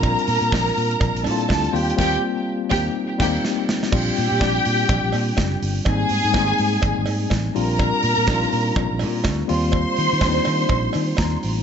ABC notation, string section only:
X:1
M:4/4
L:1/8
Q:"Swing 16ths" 1/4=124
K:Bb
V:1 name="String section"
[Bb]4- [Bb] [Aa]2 [Gg] | [Gg] z2 [Gg] z [Gg] z2 | [Gg]6- [Gg] z | [_A_a]6 z [Bb]- |
[Bb]6 z [cc']- | [cc']6- [cc'] z |]